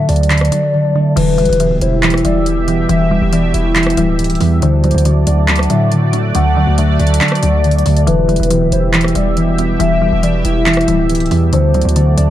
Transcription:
Already playing: synth pluck D3, harp D3 F#3 A3 B3
0.09 808-style bass D2, harp D4, soft synth lead D5, closed hi-hat, open hi-hat
0.16 closed hi-hat
0.23 closed hi-hat
0.30 synth pluck D3, harp D3, clap, closed hi-hat
0.38 cross-stick, closed hi-hat
0.45 closed hi-hat
0.52 synth pluck D3, harp F#3, closed hi-hat
0.74 harp D3
0.95 synth pluck D3, harp A3
1.16 808-style bass E1, analog synth pad B2 G4 E5, synth pluck E3, harp E3, soft synth lead B4, closed hi-hat, crash
1.38 synth pluck E3, harp G3, closed hi-hat
1.45 808-style bass E1, closed hi-hat
1.53 closed hi-hat
1.60 harp B2, synth pluck E3, closed hi-hat
1.71 808-style bass D1
1.81 808-style bass E1, harp E4, soft synth lead C5, closed hi-hat
2.03 synth pluck E3, harp E3, clap, closed hi-hat
2.10 cross-stick, closed hi-hat
2.18 closed hi-hat
2.24 808-style bass E1, synth pluck E3, harp G3, soft synth lead D5, closed hi-hat
2.46 harp E3, closed hi-hat
2.68 synth pluck E3, harp B3, closed hi-hat
2.89 808-style bass E1, synth pluck E3, harp E3, soft synth lead E5, closed hi-hat
3.11 synth pluck E3, harp G3
3.22 808-style bass E1
3.32 synth pluck E3, harp B3, soft synth lead D5, closed hi-hat
3.54 808-style bass E1, harp E4, soft synth lead E5, closed hi-hat
3.76 harp E3, synth pluck E3, clap, closed hi-hat
3.83 cross-stick, closed hi-hat
3.90 closed hi-hat
3.97 808-style bass D1, synth pluck E3, harp G3, closed hi-hat
4.19 harp E3, closed hi-hat
4.24 closed hi-hat
4.30 closed hi-hat
4.35 closed hi-hat
4.40 808-style bass E2, synth pluck E3, harp B3, open hi-hat
4.62 808-style bass D2, harp D3, synth pluck D3, analog synth pad A3 F#4 D5, soft synth lead C5, closed hi-hat
4.84 synth pluck D3, harp F#3, closed hi-hat
4.91 808-style bass D2, closed hi-hat
4.98 closed hi-hat
5.05 synth pluck D3, harp A3, closed hi-hat
5.27 808-style bass D2, harp D4, soft synth lead D5, closed hi-hat
5.48 synth pluck D3, harp D3, clap, closed hi-hat
5.56 cross-stick, closed hi-hat
5.63 closed hi-hat
5.70 808-style bass A2, synth pluck D3, harp F#3, soft synth lead E5, closed hi-hat
5.91 harp D3, closed hi-hat
6.13 synth pluck D3, harp A3, closed hi-hat
6.35 808-style bass D2, harp D3, synth pluck D3, soft synth lead F#5, closed hi-hat
6.56 synth pluck D3, harp F#3
6.67 808-style bass D2
6.77 synth pluck D3, harp A3, soft synth lead E5, closed hi-hat
6.99 808-style bass D2, harp D4, soft synth lead D5, closed hi-hat
7.07 closed hi-hat
7.14 closed hi-hat
7.21 harp D3, synth pluck D3, clap, closed hi-hat
7.28 cross-stick, closed hi-hat
7.35 closed hi-hat
7.43 808-style bass D2, synth pluck D3, harp F#3, closed hi-hat
7.64 harp D3, closed hi-hat
7.71 closed hi-hat
7.79 closed hi-hat
7.86 808-style bass D2, synth pluck D3, harp A3, closed hi-hat, open hi-hat
7.97 closed hi-hat
8.07 808-style bass E1, analog synth pad B2 G4 E5, synth pluck E3, harp E3, soft synth lead B4, closed hi-hat
8.29 synth pluck E3, harp G3, closed hi-hat
8.36 808-style bass E1, closed hi-hat
8.43 closed hi-hat
8.50 harp B2, synth pluck E3, closed hi-hat
8.61 808-style bass D1
8.72 808-style bass E1, harp E4, soft synth lead C5, closed hi-hat
8.94 synth pluck E3, harp E3, clap, closed hi-hat
9.01 cross-stick, closed hi-hat
9.08 closed hi-hat
9.15 808-style bass E1, synth pluck E3, harp G3, soft synth lead D5, closed hi-hat
9.37 harp E3, closed hi-hat
9.58 synth pluck E3, harp B3, closed hi-hat
9.80 808-style bass E1, synth pluck E3, harp E3, soft synth lead E5, closed hi-hat
10.01 synth pluck E3, harp G3
10.12 808-style bass E1
10.23 synth pluck E3, harp B3, soft synth lead D5, closed hi-hat
10.45 808-style bass E1, harp E4, soft synth lead E5, closed hi-hat
10.66 harp E3, synth pluck E3, clap, closed hi-hat
10.74 cross-stick, closed hi-hat
10.81 closed hi-hat
10.88 808-style bass D1, synth pluck E3, harp G3, closed hi-hat
11.10 harp E3, closed hi-hat
11.15 closed hi-hat
11.20 closed hi-hat
11.26 closed hi-hat
11.31 808-style bass E2, synth pluck E3, harp B3, open hi-hat
11.52 808-style bass D2, harp D3, synth pluck D3, analog synth pad A3 F#4 D5, soft synth lead C5, closed hi-hat
11.74 synth pluck D3, harp F#3, closed hi-hat
11.82 808-style bass D2, closed hi-hat
11.89 closed hi-hat
11.96 synth pluck D3, harp A3, closed hi-hat
12.17 808-style bass D2, harp D4, soft synth lead D5, closed hi-hat

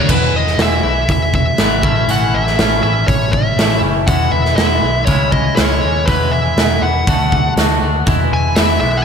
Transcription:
0.08 picked electric bass E1, clean electric guitar E3 G#3 B3 E4, lead electric guitar B4, kick, crash
0.33 picked electric bass E1, lead electric guitar D#5
0.47 snare
0.58 picked electric bass E1, clean electric guitar E3 G#3 B3 E4, snare, open hi-hat
0.62 lead electric guitar E5
0.83 picked electric bass B1, clean electric guitar G#3 B3 E4
1.09 picked electric bass E1, lead electric guitar E5, kick, open hi-hat
1.34 lead electric guitar E5, kick
1.58 picked electric bass G#1, clean electric guitar E3 G#3 B3 E4, snare, open hi-hat
1.83 picked electric bass A1, clean electric guitar A2 E3 A3 C#4 E4, kick
2.08 picked electric bass A1, clean electric guitar A2 E3 A3 C#4 E4, lead electric guitar F#5, open hi-hat
2.34 picked electric bass A1, lead electric guitar E5
2.47 snare
2.58 picked electric bass A1, clean electric guitar E3 A3 C#4 E4, snare, open hi-hat
2.83 picked electric bass A1, clean electric guitar A3 C#4 E4, lead electric guitar E5
3.07 picked electric bass A1, lead electric guitar C#5, kick, open hi-hat
3.33 lead electric guitar E5, kick
3.57 picked electric bass A1, clean electric guitar A2 E3 A3 C#4 E4, snare, open hi-hat
3.82 picked electric bass F#1, clean electric guitar A3 C#4 E4
4.07 picked electric bass E1, clean electric guitar E3 G#3 B3 E4, lead electric guitar F#5, kick, open hi-hat
4.32 picked electric bass E1, lead electric guitar E5
4.45 snare
4.56 picked electric bass E1, clean electric guitar E3 G#3 B3 E4, lead electric guitar E5, snare, open hi-hat
4.82 picked electric bass B1, clean electric guitar G#3 B3 E4
5.06 picked electric bass C#2, clean electric guitar C#3 G#3 C#4 E4, lead electric guitar C#5, kick, open hi-hat
5.32 lead electric guitar D#5, kick
5.56 picked electric bass C#2, clean electric guitar C#3 G#3 C#4 E4, lead electric guitar C#5, snare, open hi-hat
5.81 picked electric bass D#2, clean electric guitar G#3 C#4 E4
6.06 picked electric bass E1, clean electric guitar E3 G#3 B3 E4, lead electric guitar B4, kick, open hi-hat
6.31 picked electric bass E1, lead electric guitar E5
6.57 picked electric bass E1, clean electric guitar E3 G#3 B3 E4, snare, open hi-hat
6.81 picked electric bass E1, clean electric guitar G#3 B3 E4, lead electric guitar F#5
7.07 picked electric bass D2, clean electric guitar D3 A3 D4 F#4, kick, open hi-hat
7.32 kick
7.56 picked electric bass D2, clean electric guitar D3 A3 D4 F#4, snare, open hi-hat
7.81 picked electric bass D2, clean electric guitar A3 D4 F#4
8.06 picked electric bass E1, clean electric guitar E3 G#3 B3 E4, kick, open hi-hat
8.32 picked electric bass E1, lead electric guitar G#5
8.55 picked electric bass E1, clean electric guitar E3 G#3 B3 E4, lead electric guitar E5, snare, open hi-hat
8.80 picked electric bass B1, clean electric guitar G#3 B3 E4, lead electric guitar E5
8.97 lead electric guitar F#5

